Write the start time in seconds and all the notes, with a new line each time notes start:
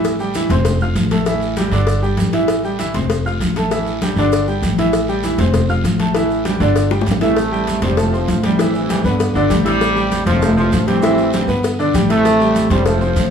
Already playing: A1 E3 E4 E5
0.04 cowbell, high conga, maracas
0.19 G3 G4 G5, high conga, maracas
0.34 E3 E4 E5, cowbell, high conga, short guiro, maracas
0.50 F1 C4 C5 C6, cowbell, high conga, low conga, short guiro, maracas
0.65 cowbell, high conga, low conga, long guiro, maracas
0.80 F4 F5 F6, high conga, maracas
0.95 A1, cowbell, high conga, short guiro, maracas
1.11 A3 A4 A5, cowbell, high conga, short guiro, maracas
1.26 E3 E4 E5, cowbell, high conga, long guiro, maracas
1.42 maracas
1.57 G3 G4 G5, cowbell, high conga, short guiro, maracas
1.71 G1 D3 D4 D5, high conga, short guiro, maracas
1.87 cowbell, high conga, long guiro, maracas
2.03 G3 G4 G5, high conga, maracas
2.17 A1, cowbell, high conga, short guiro, maracas
2.33 E3 E4 E5, cowbell, short guiro, maracas
2.48 cowbell, high conga, long guiro, maracas
2.64 G3 G4 G5, high conga, maracas
2.79 E3 E4 E5, cowbell, high conga, short guiro, maracas
2.94 F1 C4 C5 C6, cowbell, high conga, low conga, short guiro, maracas
3.10 cowbell, high conga, long guiro, maracas
3.26 F4 F5 F6, high conga, maracas
3.40 A1, cowbell, high conga, short guiro, maracas
3.56 A3 A4 A5, cowbell, high conga, short guiro, maracas
3.71 E3 E4 E5, cowbell, high conga, long guiro, maracas
3.87 high conga, maracas
4.02 G3 G4 G5, cowbell, high conga, short guiro, maracas
4.16 G1 D3 D4 D5, high conga, short guiro, maracas
4.32 cowbell, high conga, long guiro, maracas
4.47 G3 G4 G5, high conga, maracas
4.62 A1, cowbell, high conga, short guiro, maracas
4.78 E3 E4 E5, cowbell, short guiro, maracas
4.93 cowbell, high conga, long guiro, maracas
5.09 G3 G4 G5, high conga, maracas
5.23 E3 E4 E5, cowbell, high conga, short guiro, maracas
5.38 F1 C4 C5 C6, cowbell, high conga, low conga, short guiro, maracas
5.54 cowbell, high conga, low conga, long guiro, maracas
5.69 F4 F5 F6, high conga, maracas
5.84 A1, cowbell, high conga, short guiro, maracas
6.00 A3 A4 A5, cowbell, high conga, short guiro, maracas
6.15 E3 E4 E5, cowbell, high conga, maracas
6.30 high conga, maracas
6.45 G3 G4 G5, cowbell, high conga, short guiro, maracas
6.60 G1 D3 D4 D5, high conga, short guiro, maracas
6.76 cowbell, high conga, maracas
6.90 G3 G4 G5, high bongo, high conga, maracas
7.01 high bongo
7.06 A1, cowbell, high conga, short guiro, maracas
7.11 low bongo
7.21 C3 E3 A3 E4 E5, cowbell, low bongo, short guiro, maracas
7.36 cowbell, high conga, long guiro, maracas
7.52 G3 G4 G5, high conga, maracas
7.67 cowbell, high conga, short guiro, maracas
7.82 F1 G3 C4 C5 C6, cowbell, high conga, low conga, short guiro, maracas
7.97 A2 C3 F3 A3 A4 A5, cowbell, high conga, long guiro, maracas
8.13 C4 C5 C6, high conga, maracas
8.28 A1, cowbell, high conga, short guiro, maracas
8.43 C3 E3 G3 G4 G5, cowbell, high conga, short guiro, maracas
8.59 E3 E4 E5, cowbell, high conga, long guiro, maracas
8.74 G2 C3 E3, high conga, maracas
8.89 G3 G4 G5, cowbell, high conga, short guiro, maracas
9.04 G1 G2 B2 D3 B3 B4 B5, high conga, short guiro, maracas
9.20 cowbell, high conga, long guiro, maracas
9.34 G1 D3 D4 D5, high conga, maracas
9.50 A1 G3 G4 G5, cowbell, high conga, short guiro, maracas
9.65 C3 E3 G3 E4 E5 E6, cowbell, short guiro, maracas
9.81 cowbell, high conga, long guiro, maracas
9.95 G3 G4 G5, high conga, maracas
10.12 cowbell, high conga, short guiro, maracas
10.26 F1 A2 C3 F3 C4 C5 C6, cowbell, high conga, low conga, short guiro, maracas
10.41 A3 A4 A5, cowbell, high conga, low conga, maracas
10.57 A2 C3 F3 C4 C5 C6, high conga, maracas
10.72 A1, cowbell, high conga, short guiro, maracas
10.87 E3 G3 C4 G4 G5, cowbell, high conga, short guiro, maracas
11.02 E3 E4 E5, cowbell, high conga, long guiro, maracas
11.18 high conga, maracas
11.33 G3 G4 G5, cowbell, high conga, short guiro, maracas
11.48 G1 B3 B4 B5, high conga, short guiro, maracas
11.64 cowbell, high conga, long guiro, maracas
11.79 D3 D4 D5, high conga, maracas
11.94 A1 G3 G4 G5, cowbell, high conga, short guiro, maracas
12.10 C3 E3 A3 E4 E5 E6, cowbell, short guiro, maracas
12.25 cowbell, high conga, long guiro, maracas
12.40 G3 G4 G5, high conga, maracas
12.55 cowbell, high conga, short guiro, maracas
12.70 F1 G3 C4 C5 C6, cowbell, high conga, low conga, short guiro, maracas
12.86 A2 C3 F3 A3 A4 A5, cowbell, high conga, low conga, long guiro, maracas
13.01 C4 C5 C6, high conga, maracas
13.16 A1, cowbell, high conga, short guiro, maracas